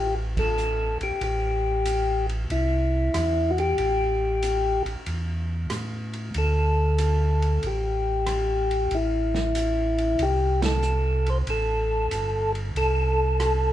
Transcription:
Already playing: A1 G4
0.37 A4, kick, ride
0.57 hi-hat pedal
1.01 A1 G4, ride
1.21 A1 G4, ride
1.85 hi-hat pedal, ride
2.29 ride
2.50 C2 E4, ride
3.14 E2, cross-stick, hi-hat pedal, ride
3.50 F#4
3.58 G4, ride
3.78 A1, ride
4.43 hi-hat pedal, ride
4.85 A1, ride
5.06 E2, ride
5.70 A2, cross-stick, hi-hat pedal, ride
6.13 ride
6.34 D2 A4, ride
6.98 hi-hat pedal, ride
7.42 ride
7.63 A1, ride
7.67 G4
8.26 cross-stick, hi-hat pedal, ride
8.71 ride
8.91 A1 E4, ride
9.34 snare
9.55 hi-hat pedal, ride
9.98 ride
10.19 C2 G4, ride
10.62 A4, snare, ride
10.82 hi-hat pedal
11.26 C5, ride
11.47 A1 A4, ride
12.11 G1, hi-hat pedal, ride
12.55 ride
12.75 C2 A4, ride
13.40 cross-stick, hi-hat pedal, ride

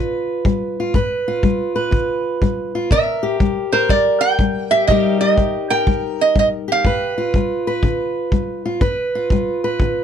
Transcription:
Already playing: D3 F4 B4
0.45 G3, kick
0.80 F4
0.94 G2 B4, kick
1.28 F4
1.43 G3, kick
1.76 B4
1.91 D3, kick
2.42 G3, kick
2.75 F4
2.91 C3 A#4 E5, kick
3.23 G4
3.40 G3, kick
3.72 A#4 C5
3.89 G3 D5, kick
4.21 G5
4.39 G3, kick
4.71 G4 E5
4.87 C3 G3 D#4 G4 D#5, kick
4.92 A#4
5.21 G4 D#5
5.38 G3, kick
5.70 A#4 G5
5.87 G3, kick
6.21 D#5
6.36 G3 D#5, kick
6.68 G4
6.72 F5
6.85 G2 B4, kick
7.18 F4
7.34 G3, kick
7.67 B4
7.83 D3, kick
8.32 G3, kick
8.66 F4
8.81 G2 B4, kick
9.15 F4
9.30 G3, kick
9.64 B4
9.80 D3, kick

